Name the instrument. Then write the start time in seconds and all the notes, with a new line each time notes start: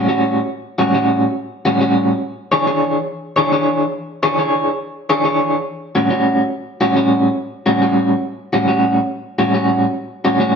clean electric guitar
0.08 A2 G3 C#4 F#4
0.78 A2 G3 C#4 F#4
0.94 A2 G3 C#4 F#4
1.65 A2 G3 C#4 F#4
1.81 A2 G3 C#4 F#4
2.52 E3 D4 G#4 C#5
2.66 E3 D4 G#4 C#5
3.36 E3 D4 G#4 C#5
3.51 E3 D4 G#4 C#5
4.23 E3 D4 G#4 C#5
4.38 E3 D4 G#4 C#5
5.10 E3 D4 G#4 C#5
5.24 E3 D4 G#4 C#5
5.95 A2 G3 C#4 F#4
6.10 A2 G3 C#4 F#4
6.81 A2 G3 C#4 F#4
6.96 A2 G3 C#4 F#4
7.66 A2 G3 C#4 F#4
7.81 A2 G3 C#4 F#4
8.53 A2 G3 C#4 F#4
8.67 A2 G3 C#4 F#4
9.39 A2 G3 C#4 F#4
9.54 A2 G3 C#4 F#4
10.25 A2 G3 C#4 F#4
10.39 A2 G3 C#4 F#4